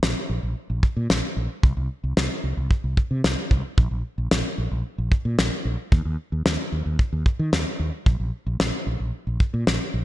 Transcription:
0.03 fretless electric bass A#1, snare
0.30 fretless electric bass A#1
0.43 fretless electric bass A#1
0.70 fretless electric bass A#1
0.83 kick
0.97 fretless electric bass A#2
1.10 fretless electric bass A#1, snare
1.37 fretless electric bass A#1
1.63 fretless electric bass C2, kick
1.77 fretless electric bass C2
2.04 fretless electric bass C2
2.17 fretless electric bass C2, snare
2.44 fretless electric bass C2
2.57 fretless electric bass C2
2.71 kick
2.84 fretless electric bass C2
2.97 kick
3.11 fretless electric bass C3
3.24 fretless electric bass C2, snare
3.51 fretless electric bass C2, kick
3.78 fretless electric bass A#1, kick
3.91 fretless electric bass A#1
4.18 fretless electric bass A#1
4.31 fretless electric bass A#1, snare
4.58 fretless electric bass A#1
4.71 fretless electric bass A#1
4.98 fretless electric bass A#1
5.12 kick
5.25 fretless electric bass A#2
5.38 fretless electric bass A#1, snare
5.65 fretless electric bass A#1
5.92 fretless electric bass D#2, kick
6.05 fretless electric bass D#2
6.32 fretless electric bass D#2
6.46 fretless electric bass D#2, snare
6.72 fretless electric bass D#2
6.86 fretless electric bass D#2
6.99 kick
7.13 fretless electric bass D#2
7.26 kick
7.39 fretless electric bass D#3
7.53 fretless electric bass D#2, snare
7.79 fretless electric bass D#2
8.06 fretless electric bass A#1, kick
8.20 fretless electric bass A#1
8.46 fretless electric bass A#1
8.60 fretless electric bass A#1, snare
8.87 fretless electric bass A#1
9.00 fretless electric bass A#1
9.27 fretless electric bass A#1
9.40 kick
9.54 fretless electric bass A#2
9.67 fretless electric bass A#1, snare
9.94 fretless electric bass A#1

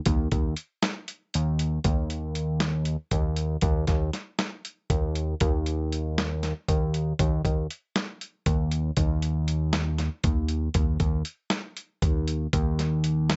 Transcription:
0.06 analog synth bass D#2, kick, closed hi-hat
0.32 analog synth bass D#2, kick, closed hi-hat
0.57 closed hi-hat
0.83 snare, closed hi-hat
1.08 closed hi-hat
1.34 analog synth bass D#2, closed hi-hat
1.59 closed hi-hat
1.84 analog synth bass D#2, kick, closed hi-hat
2.10 closed hi-hat
2.35 closed hi-hat
2.60 snare, closed hi-hat
2.85 closed hi-hat
3.11 analog synth bass D#2, kick, closed hi-hat
3.36 closed hi-hat
3.61 analog synth bass D#2, kick, closed hi-hat
3.87 analog synth bass D#2, kick, snare, closed hi-hat
4.13 snare, closed hi-hat
4.39 snare, closed hi-hat
4.65 closed hi-hat
4.90 analog synth bass D#2, kick, closed hi-hat
5.15 closed hi-hat
5.40 analog synth bass D#2, kick, closed hi-hat
5.66 closed hi-hat
5.92 closed hi-hat
6.18 snare, closed hi-hat
6.43 snare, closed hi-hat
6.68 analog synth bass D#2, kick, closed hi-hat
6.94 closed hi-hat
7.19 analog synth bass D#2, kick, closed hi-hat
7.45 analog synth bass D#2, kick, closed hi-hat
7.71 closed hi-hat
7.96 snare, closed hi-hat
8.21 closed hi-hat
8.46 analog synth bass D#2, kick, closed hi-hat
8.71 closed hi-hat
8.97 analog synth bass D#2, kick, closed hi-hat
9.22 closed hi-hat
9.48 closed hi-hat
9.73 snare, closed hi-hat
9.98 snare, closed hi-hat
10.24 analog synth bass D#2, kick, closed hi-hat
10.48 closed hi-hat
10.74 analog synth bass D#2, kick, closed hi-hat
11.00 analog synth bass D#2, kick, closed hi-hat
11.25 closed hi-hat
11.50 snare, closed hi-hat
11.77 closed hi-hat
12.02 analog synth bass D#2, kick, closed hi-hat
12.28 closed hi-hat
12.53 analog synth bass D#2, kick, closed hi-hat
12.79 snare, closed hi-hat
13.04 closed hi-hat
13.30 snare, closed hi-hat

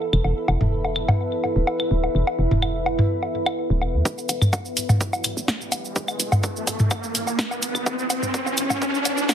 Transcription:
Already playing: ambient pad E4 B4 E5 B5, synth texture A4
0.13 fm bass E1, claves
0.24 fm bass E1, low woodblock
0.48 fm bass E1, low woodblock
0.61 fm bass E1, mid tom
0.85 low woodblock
0.96 claves
1.08 mid tom, low woodblock
1.44 low woodblock
1.56 fm bass D1
1.67 low woodblock
1.80 claves
1.91 fm bass D1
2.04 low woodblock
2.15 fm bass E1
2.27 low woodblock
2.39 fm bass E1
2.51 fm bass E1, mid tom
2.62 claves, low woodblock
2.86 low woodblock
2.99 mid tom
3.23 low woodblock
3.46 claves, low woodblock
3.70 fm bass D1
3.81 fm bass E1, low woodblock
3.94 fm bass E2
4.05 fm bass E1, kick, riser, cabasa
4.18 cabasa
4.29 fm bass E1, closed hi-hat, cabasa, low woodblock
4.42 fm bass E1, mid tom, cabasa, claves
4.53 kick, cabasa, low woodblock
4.65 cabasa
4.77 closed hi-hat, cabasa
4.89 mid tom, cabasa, low woodblock
5.01 kick, cabasa
5.13 cabasa, low woodblock
5.24 closed hi-hat, cabasa, claves
5.37 fm bass D1, cabasa
5.48 kick, snare, cabasa, low woodblock
5.61 cabasa
5.72 fm bass D1, closed hi-hat, cabasa, low woodblock
5.85 cabasa
5.96 fm bass E1, kick, cabasa
6.08 cabasa, claves, low woodblock
6.20 fm bass E1, closed hi-hat, cabasa
6.32 fm bass E1, mid tom, cabasa, low woodblock
6.43 kick, cabasa
6.56 cabasa
6.67 kick, closed hi-hat, cabasa, low woodblock
6.79 mid tom, cabasa
6.91 kick, cabasa, claves, low woodblock
7.03 cabasa
7.15 closed hi-hat, cabasa
7.27 cabasa, low woodblock
7.39 kick, snare, cabasa
7.51 cabasa, low woodblock
7.62 closed hi-hat, cabasa
7.75 fm bass E1, cabasa, claves
7.86 fm bass E1, kick, cabasa, low woodblock
7.99 cabasa
8.10 fm bass E1, closed hi-hat, cabasa, low woodblock
8.22 fm bass E1, mid tom, cabasa
8.34 kick, cabasa
8.46 cabasa, low woodblock
8.57 closed hi-hat, cabasa, claves
8.70 mid tom, cabasa, low woodblock
8.82 kick, cabasa
8.94 cabasa
9.05 closed hi-hat, cabasa, low woodblock
9.17 fm bass D1, cabasa
9.29 kick, snare, cabasa, low woodblock

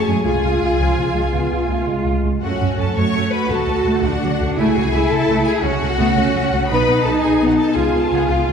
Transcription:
Already playing: cello section A3, french horn section F#4 G#4
0.06 double bass section F#2, viola section G#3 C#4, violin section G#4 G#5
0.23 double bass section C#2, french horn section G#3 F4, viola section G#3, cello section F4, violin section G#4 G#5
0.28 viola section F4
0.43 double bass section C#2, viola section G#3 F4
0.61 double bass section C#2, viola section G#3 F4
0.77 double bass section C#2, french horn section F3, viola section G#3 F4
0.97 double bass section C#2, viola section G#3 F4
1.13 double bass section C#2, french horn section G#3, viola section F4
1.17 viola section G#3
1.29 french horn section B3
1.33 double bass section C#2, viola section G#3 F4
1.51 double bass section C#2, viola section G#3 F4
1.65 double bass section C#2, french horn section A3, viola section F4
1.69 viola section G#3
1.85 double bass section C#2, french horn section G#3, viola section G#3 F4
2.05 double bass section C#2, viola section G#3 F4
2.23 double bass section C#2, viola section G#3 F4
2.41 double bass section F#2, french horn section A3 F#4, viola section A3 F#4, cello section C#4, violin section F#4 F#5
2.60 double bass section F#2, viola section A3
2.77 double bass section F#2, viola section F#3, violin section A4 A5
2.95 double bass section F#2, cello section A3, viola section A3, violin section C#5 C#6
3.13 double bass section F#2, viola section A3
3.31 violin section B4 B5
3.49 double bass section D2, viola section F#3, cello section F#4, violin section A4 A5
3.67 double bass section D2, viola section A3
3.84 double bass section D2, viola section A3
4.02 double bass section D2, viola section A3, cello section D4, violin section F#4 F#5
4.22 double bass section D2, viola section F#3
4.40 double bass section D2, viola section A3
4.55 double bass section C#2, viola section A3 E4, french horn section E4, cello section E4, violin section G#4 G#5
4.74 double bass section C#2, viola section A3, cello section F#4
4.92 double bass section C#2, viola section E3, cello section E4
5.09 double bass section C#2, viola section A3, violin section A4 A5
5.29 double bass section C#2, viola section A3
5.44 violin section G#4 G#5
5.61 double bass section C#2, viola section F#3 C#4, cello section C#4, violin section F#4 F#5, french horn section F#4
5.81 double bass section C#2, cello section A3, viola section A3
5.98 double bass section C#2, viola section A3, cello section B3
6.16 double bass section C#2, viola section A3, cello section C#4
6.34 double bass section C#2, viola section F#3
6.52 double bass section C#2, viola section A3
6.67 double bass section B1, french horn section B3 D#4, cello section D#4, violin section B4 B5
6.71 viola section B3 D#4
6.87 double bass section B1, viola section B3
7.01 double bass section B1, violin section A4 A5
7.07 viola section F#3
7.20 double bass section B1, viola section B3, violin section G#4 G#5
7.40 double bass section B1, viola section B3
7.47 violin section F#4 F#5
7.57 violin section A4 A5
7.73 double bass section C#2, viola section G#3 F4, french horn section B3 F4, cello section F4, violin section G#4 G#5
7.93 double bass section C#2, viola section B3
8.00 violin section A4 A5
8.10 double bass section C#2, viola section B3, violin section G#4 G#5
8.27 double bass section C#2, viola section B3, french horn section B3 F4, violin section F4 F5
8.46 double bass section C#2, viola section G#3

